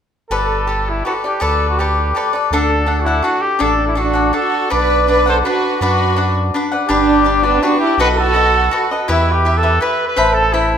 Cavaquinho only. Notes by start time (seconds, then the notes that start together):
0.31 G4 A4 B4 D5
0.67 G4 A4 B4 D5
1.05 G4 A4 B4 D5
1.24 A4 B4 D5
1.40 G4 A4 B4 D5
1.79 G4 A4 B4 D5
2.15 G4 A4 B4 D5
2.33 A4 B4 D5
2.53 D4 A4 D5 F#5
2.86 D4 A4 D5 F#5
3.06 A4 D5 F#5
3.23 D4 A4 D5 F#5
3.59 D4 A4 D5 F#5
3.95 D4 A4 D5 F#5
4.13 A4 D5 F#5
4.33 D4 A4 D5 F#5
4.70 D4 B4 D5 F#5
5.08 D4 B4 D5 F#5
5.26 B4 D5 F#5
5.45 D4 B4 D5 F#5
5.81 D4 B4 D5 F#5
6.16 D4 B4 D5 F#5
6.54 D4 B4 D5 F#5
6.72 B4 D5 F#5
6.89 D4 G4 B4 D5
7.24 D4 G4 B4 D5
7.43 G4 B4 D5
7.63 D4 G4 B4 D5
7.99 F#4 A4 B4 D#5
8.33 F#4 A4 B4 D#5
8.71 F#4 A4 B4 D#5
8.91 A4 B4 D#5
9.08 E4 G4 B4 E5
9.45 E4 G4 B4 E5
9.63 G4 B4 E5
9.81 E4 G4 B4 E5
10.16 C5 E5 A5 B5
10.53 C5 E5 A5 B5